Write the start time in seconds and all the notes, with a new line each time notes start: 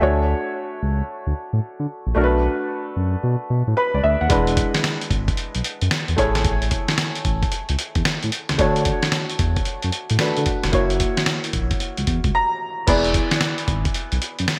Already playing: E5
0.01 D2 A3 D4 F#4 C#5
0.83 C#2
1.27 D2
1.53 A2
1.80 D3
2.07 A#1
2.15 B1 A3 D4 F#4 A#4
2.24 B4
2.97 F#2
3.23 B2
3.50 B2
3.67 A2
3.77 B4 B5
3.94 C#2 D5
4.04 D2 E5
4.21 D#2 F#5
4.29 E1 G#3 D4 E4 B4, kick, closed hi-hat
4.47 closed hi-hat
4.57 kick, closed hi-hat
4.74 snare, closed hi-hat
4.84 snare, closed hi-hat
5.01 closed hi-hat
5.11 G#1, kick, closed hi-hat
5.28 kick, closed hi-hat
5.37 closed hi-hat
5.55 B1, closed hi-hat
5.64 closed hi-hat
5.82 F#2, closed hi-hat
5.91 snare, closed hi-hat
6.08 E2, closed hi-hat
6.16 A1 A3 E4 G#4 C#5, kick, closed hi-hat
6.35 snare, closed hi-hat
6.45 kick, closed hi-hat
6.62 closed hi-hat
6.71 kick, closed hi-hat
6.88 snare, closed hi-hat
6.98 snare, closed hi-hat
7.15 closed hi-hat
7.25 A1, kick, closed hi-hat
7.43 kick, closed hi-hat
7.52 closed hi-hat
7.69 C#2, closed hi-hat
7.79 closed hi-hat
7.95 E2, kick, closed hi-hat
8.05 snare, closed hi-hat
8.23 A2, closed hi-hat
8.32 closed hi-hat
8.49 C#2, snare, closed hi-hat
8.58 D2 A3 D4 F#4 C#5, kick, closed hi-hat
8.76 closed hi-hat
8.85 kick, closed hi-hat
9.02 snare, closed hi-hat
9.12 snare, closed hi-hat
9.30 closed hi-hat
9.39 E2, kick, closed hi-hat
9.56 kick, closed hi-hat
9.65 closed hi-hat
9.82 F#2, closed hi-hat
9.92 closed hi-hat
10.10 A2, closed hi-hat
10.19 A3 D4 F#4 B4, snare, closed hi-hat
10.37 D3, closed hi-hat
10.46 kick, closed hi-hat
10.63 F1, snare, closed hi-hat
10.72 F#1 A#3 E4 F#4 C#5, kick, closed hi-hat
10.90 closed hi-hat
11.00 kick, closed hi-hat
11.17 snare, closed hi-hat
11.26 snare, closed hi-hat
11.44 closed hi-hat
11.53 A#1, kick, closed hi-hat
11.71 kick, closed hi-hat
11.80 closed hi-hat
11.97 C#2, closed hi-hat
12.07 E2, kick, closed hi-hat
12.24 C#2, kick, closed hi-hat
12.35 A#5
12.87 E1 B3 E4 G#4 D5, kick, closed hi-hat, crash
13.04 closed hi-hat
13.14 kick, closed hi-hat
13.31 snare, closed hi-hat
13.41 snare, closed hi-hat
13.58 closed hi-hat
13.68 G#1, kick, closed hi-hat
13.85 kick, closed hi-hat
13.94 closed hi-hat
14.12 B1, closed hi-hat
14.22 closed hi-hat
14.39 F#2, closed hi-hat
14.48 snare, closed hi-hat